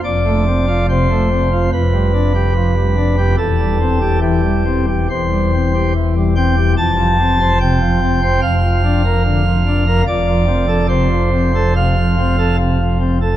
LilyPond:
<<
  \new Staff \with { instrumentName = "Pipe organ" } { \time 4/4 \key f \major \tempo 4 = 72 d''4 c''4 b'2 | a'4 g'4 c''4 r8 g''8 | a''4 g''4 f''2 | d''4 c''4 f''4 r4 | }
  \new Staff \with { instrumentName = "Pipe organ" } { \clef bass \time 4/4 \key f \major << { f,16 a16 c'16 f'16 c16 a16 c'16 f'16 f,16 g16 d'16 g'16 f16 g16 d'16 g'16 | e,16 g16 c'16 g'16 e16 g16 c'16 g'16 e,16 g16 c'16 g'16 e16 g16 c'16 g'16 | f,16 f16 c'16 c''16 c16 f16 c'16 c''16 f,16 f16 d'16 bes'16 d16 f16 d'16 bes'16 | f,16 f16 c'16 a'16 c16 f16 c'16 a'16 c16 f16 c'16 a'16 c16 f16 c'16 a'16 | } \\ { f,,2 f,,2 | e,,2 e,,2 | f,,2 f,,2 | f,,1 | } >> }
>>